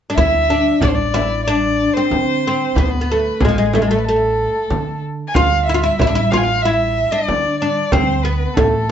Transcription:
0.10 0.17 D4 medium
0.16 0.69 D2 medium
0.16 0.50 E4 medium
0.16 0.77 E5 medium
0.16 frame drum medium
0.50 0.81 D4 medium
0.81 1.86 A1 medium
0.81 1.14 D4 medium
0.81 0.90 D5 medium
0.81 frame drum medium
0.89 0.96 C5 medium
0.95 1.45 D5 medium
1.14 1.47 E4 medium
1.14 frame drum medium
1.45 1.97 D4 medium
1.45 1.95 D5 medium
1.93 2.46 C4 medium
1.93 2.77 C5 medium
2.11 2.63 D3 medium
2.11 frame drum medium
2.47 2.79 C4 medium
2.75 3.28 D2 medium
2.75 3.00 B3 medium
2.75 2.84 B4 medium
2.75 frame drum medium
2.83 2.92 C5 medium
2.90 3.43 B4 medium
3.01 3.08 B3 medium
3.12 3.43 A3 medium
3.40 4.45 A1 medium
3.40 3.54 G#4 medium
3.40 frame drum medium
3.45 3.55 F3 medium
3.45 3.50 G#3 medium
3.55 3.74 G#3 medium
3.55 3.89 G#4 medium
3.73 3.80 A3 medium
3.73 frame drum medium
3.82 3.88 G#3 medium
3.88 4.06 A3 medium
3.88 3.98 A4 medium
3.99 4.06 B4 soft
4.05 5.00 A3 medium
4.05 5.02 A4 medium
4.70 5.22 D3 medium
4.70 frame drum medium
5.28 5.36 G#5 medium
5.34 5.87 D2 medium
5.34 5.69 F4 loud
5.34 5.65 F5 medium
5.34 frame drum medium
5.66 5.74 E4 medium
5.66 5.79 E5 medium
5.74 5.81 F4 medium
5.81 5.99 E4 medium
5.81 5.97 E5 medium
5.97 7.03 A1 medium
5.97 6.32 E5 medium
5.97 frame drum medium
6.01 6.07 E4 medium
6.07 6.14 D4 medium
6.15 6.33 E4 medium
6.31 6.65 F4 medium
6.31 6.39 F5 medium
6.31 frame drum medium
6.38 6.45 G#5 medium
6.43 6.64 F5 medium
6.62 7.12 E4 medium
6.62 7.14 E5 medium
7.12 7.61 D4 medium
7.12 7.59 D5 medium
7.28 7.80 D3 medium
7.28 frame drum medium
7.60 7.93 D4 medium
7.60 7.93 D5 medium
7.92 8.44 D2 medium
7.92 8.23 C4 medium
7.92 8.25 C5 medium
7.92 frame drum medium
8.23 8.57 B3 medium
8.23 8.55 B4 medium
8.54 8.91 A1 medium
8.54 8.89 A3 medium
8.54 8.91 A4 medium
8.54 frame drum medium

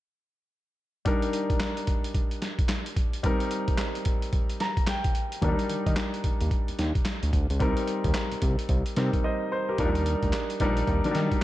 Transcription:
1.05 3.20 G3 medium
1.05 3.20 D4 medium
1.05 3.21 D#4 medium
1.05 3.21 A#4 medium
1.05 kick loud
1.05 closed hi-hat medium
1.22 closed hi-hat medium
1.33 closed hi-hat medium
1.50 kick medium
1.50 closed hi-hat medium
1.60 snare loud
1.60 clap medium
1.60 closed hi-hat medium
1.77 closed hi-hat medium
1.87 kick medium
1.87 closed hi-hat medium
2.04 closed hi-hat medium
2.15 kick medium
2.15 closed hi-hat medium
2.31 closed hi-hat medium
2.42 snare medium
2.42 closed hi-hat medium
2.59 kick medium
2.59 closed hi-hat medium
2.69 snare loud
2.69 clap medium
2.69 closed hi-hat medium
2.86 closed hi-hat soft
2.96 kick medium
2.96 closed hi-hat medium
3.13 closed hi-hat soft
3.23 5.38 G3 medium
3.23 5.38 C4 medium
3.23 5.39 D#4 medium
3.23 5.39 A#4 medium
3.23 kick loud
3.23 closed hi-hat medium
3.40 closed hi-hat medium
3.51 closed hi-hat medium
3.68 kick medium
3.68 closed hi-hat medium
3.78 snare medium
3.78 clap medium
3.78 closed hi-hat medium
3.95 closed hi-hat medium
4.05 kick medium
4.05 closed hi-hat medium
4.22 closed hi-hat medium
4.33 kick medium
4.33 closed hi-hat medium
4.50 closed hi-hat medium
4.60 4.86 A#5 medium
4.60 snare medium
4.60 closed hi-hat medium
4.77 kick medium
4.77 closed hi-hat medium
4.87 5.39 G5 medium
4.87 snare loud
4.87 clap medium
4.87 closed hi-hat medium
5.04 kick medium
5.04 closed hi-hat medium
5.15 closed hi-hat medium
5.32 closed hi-hat soft
5.42 5.56 D#2 loud
5.42 5.50 F#3 medium
5.42 7.57 D4 medium
5.42 7.57 D#4 medium
5.42 7.57 A#4 medium
5.42 kick loud
5.42 closed hi-hat medium
5.48 7.58 G3 medium
5.59 closed hi-hat medium
5.69 5.77 D#3 soft
5.69 closed hi-hat medium
5.86 5.95 D#3 loud
5.86 kick medium
5.86 closed hi-hat medium
5.96 snare loud
5.96 clap medium
5.96 closed hi-hat medium
6.14 closed hi-hat soft
6.24 6.31 D#2 soft
6.24 kick medium
6.24 closed hi-hat medium
6.41 6.50 D#2 medium
6.41 closed hi-hat medium
6.51 kick medium
6.51 closed hi-hat medium
6.68 6.73 D#2 soft
6.68 closed hi-hat soft
6.79 6.93 D#2 medium
6.79 snare medium
6.79 closed hi-hat medium
6.95 kick medium
6.95 closed hi-hat soft
7.05 snare loud
7.05 clap medium
7.05 closed hi-hat medium
7.23 7.32 D2 medium
7.23 closed hi-hat soft
7.33 7.47 D2 medium
7.33 kick medium
7.33 closed hi-hat medium
7.50 7.59 C#2 medium
7.50 closed hi-hat soft
7.59 7.75 C2 loud
7.59 8.94 G3 medium
7.59 8.94 C4 medium
7.59 8.95 D#4 medium
7.59 8.95 A#4 medium
7.59 kick loud
7.59 closed hi-hat medium
7.77 closed hi-hat medium
7.87 closed hi-hat medium
8.04 8.13 D#2 medium
8.04 kick medium
8.04 closed hi-hat medium
8.14 snare loud
8.14 clap medium
8.14 closed hi-hat medium
8.32 8.36 C2 soft
8.32 closed hi-hat soft
8.42 8.56 C2 medium
8.42 kick medium
8.42 closed hi-hat medium
8.59 closed hi-hat medium
8.69 8.84 C2 medium
8.69 kick medium
8.69 closed hi-hat medium
8.86 closed hi-hat medium
8.96 9.11 C3 loud
8.96 9.79 G3 medium
8.96 9.79 C4 medium
8.96 9.78 D#4 soft
8.96 9.25 A#4 medium
8.96 snare medium
8.96 closed hi-hat medium
9.13 kick medium
9.13 closed hi-hat soft
9.24 9.50 C5 medium
9.24 9.50 D#5 medium
9.52 9.68 C5 medium
9.69 9.95 G4 medium
9.69 9.79 A#4 medium
9.78 10.16 D#2 medium
9.78 9.87 F3 medium
9.78 10.38 D4 medium
9.78 10.38 D#4 medium
9.78 10.39 A#4 medium
9.78 kick loud
9.78 closed hi-hat medium
9.85 10.41 G3 medium
9.95 closed hi-hat medium
10.06 closed hi-hat medium
10.23 10.32 D2 medium
10.23 kick medium
10.23 closed hi-hat medium
10.33 snare medium
10.33 clap medium
10.33 closed hi-hat medium
10.50 closed hi-hat soft
10.60 10.83 A#1 medium
10.60 10.90 G3 medium
10.60 10.90 D4 medium
10.60 10.91 D#4 medium
10.60 10.91 A#4 medium
10.60 kick medium
10.60 closed hi-hat medium
10.77 closed hi-hat medium
10.87 11.02 D#2 loud
10.87 kick medium
10.87 closed hi-hat soft
11.04 11.10 F#3 medium
11.04 11.44 D4 medium
11.04 11.44 D#4 medium
11.04 11.44 A#4 medium
11.04 closed hi-hat soft
11.11 11.44 G3 medium
11.11 snare medium
11.11 closed hi-hat medium
11.15 11.29 D#3 loud
11.31 kick medium
11.31 closed hi-hat medium

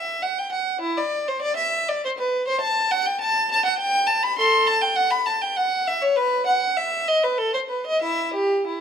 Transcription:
0.00 0.22 E5 medium
0.22 0.38 F#5 loud
0.39 0.53 G5 medium
0.52 0.82 F#5 medium
0.81 0.96 E4 loud
0.98 1.27 D5 medium
1.28 1.43 C5 medium
1.42 1.57 D5 loud
1.57 1.87 E5 loud
1.89 2.03 D5 medium
2.05 2.10 C5 loud
2.18 2.47 B4 loud
2.48 2.62 C5 loud
2.61 2.90 A5 loud
2.91 3.05 F#5 loud
3.06 3.20 G5 loud
3.21 3.49 A5 loud
3.52 3.64 A5 loud
3.66 3.79 F#5 loud
3.78 4.06 G5 loud
4.07 4.21 A5 loud
4.23 4.37 B5 loud
4.38 4.64 A4 loud
4.38 4.66 C6 loud
4.67 4.81 A5 loud
4.81 4.95 G5 loud
4.96 5.10 F#5 loud
5.11 5.25 B5 loud
5.26 5.40 A5 loud
5.42 5.55 G5 medium
5.56 5.86 F#5 loud
5.87 6.01 E5 loud
6.02 6.16 C#5 loud
6.16 6.46 B4 loud
6.47 6.76 F#5 loud
6.77 7.07 E5 loud
7.08 7.22 D#5 loud
7.24 7.38 B4 medium
7.38 7.53 A4 loud
7.54 7.60 C5 medium
7.70 7.85 B4 medium
7.87 8.02 D#5 medium
8.02 8.32 E4 medium
8.02 8.34 E5 medium
8.34 8.66 G4 medium
8.67 8.81 E4 medium

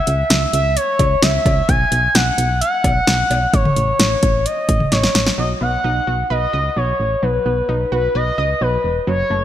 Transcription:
0.00 0.52 E5 loud
0.07 0.23 C#2 loud
0.07 closed hi-hat medium
0.30 0.46 C#2 loud
0.30 snare loud
0.30 closed hi-hat medium
0.53 0.78 C#2 loud
0.53 0.78 E5 medium
0.53 closed hi-hat medium
0.76 1.24 C#5 medium
0.76 closed hi-hat medium
0.99 1.16 C#2 loud
0.99 kick medium
0.99 closed hi-hat medium
0.99 cowbell medium
1.22 1.39 C#2 loud
1.22 1.70 E5 loud
1.22 snare loud
1.22 closed hi-hat medium
1.46 1.62 C#2 loud
1.46 kick loud
1.46 closed hi-hat medium
1.46 cowbell medium
1.68 1.85 B1 loud
1.68 2.16 G#5 loud
1.68 kick loud
1.68 closed hi-hat medium
1.92 2.08 B1 loud
1.92 closed hi-hat medium
2.15 2.31 B1 loud
2.15 2.60 F#5 loud
2.15 snare loud
2.15 closed hi-hat medium
2.38 2.62 B1 loud
2.38 closed hi-hat medium
2.61 3.55 F#5 loud
2.61 closed hi-hat medium
2.84 3.00 B1 loud
2.84 kick medium
2.84 closed hi-hat medium
2.84 cowbell medium
3.07 3.24 B1 loud
3.07 snare loud
3.07 closed hi-hat medium
3.30 3.47 B1 medium
3.30 closed hi-hat medium
3.30 cowbell medium
3.53 3.70 A1 loud
3.53 4.47 C#5 loud
3.53 kick loud
3.53 closed hi-hat medium
3.65 mid tom loud
3.76 3.93 A1 loud
3.76 closed hi-hat medium
3.99 4.16 A1 loud
3.99 snare loud
3.99 closed hi-hat medium
4.23 4.47 A1 medium
4.23 kick loud
4.23 closed hi-hat medium
4.46 4.93 D#5 loud
4.46 closed hi-hat medium
4.69 4.85 A1 loud
4.69 kick medium
4.69 closed hi-hat medium
4.80 mid tom medium
4.92 5.08 A1 loud
4.92 5.27 C#5 medium
4.92 snare medium
4.92 closed hi-hat medium
5.03 snare medium
5.15 5.31 A1 medium
5.15 snare loud
5.15 closed hi-hat medium
5.27 snare medium
5.38 5.54 B1 loud
5.38 5.54 F#3 medium
5.38 5.49 D#5 medium
5.61 5.77 B1 medium
5.61 5.77 B3 medium
5.61 6.27 F#5 medium
5.84 6.00 B1 loud
5.84 6.00 D#4 medium
6.07 6.24 B1 medium
6.07 6.23 F#4 medium
6.30 6.47 B1 loud
6.30 6.46 B4 medium
6.30 6.79 D#5 medium
6.53 6.70 C#2 medium
6.53 6.70 D#5 medium
6.76 6.93 B1 loud
6.76 6.93 F#3 medium
6.76 7.25 C#5 medium
7.00 7.16 A1 medium
7.23 7.39 B1 loud
7.23 7.39 F#3 medium
7.23 7.92 B4 medium
7.46 7.62 B1 loud
7.46 7.62 B3 medium
7.69 7.85 B1 loud
7.69 7.85 D#4 medium
7.92 8.08 B1 loud
7.92 8.08 F#4 medium
7.92 8.14 B4 medium
8.15 8.31 B1 loud
8.15 8.31 B4 medium
8.15 8.63 D#5 loud
8.38 8.54 C#2 medium
8.38 8.54 D#5 medium
8.61 8.77 B1 loud
8.61 8.77 F#3 medium
8.61 8.96 B4 medium
8.84 9.00 E1 medium
9.07 9.24 F#1 loud
9.07 9.23 F#3 medium
9.07 9.44 C#5 medium
9.30 9.44 F#1 loud
9.30 9.44 A3 medium

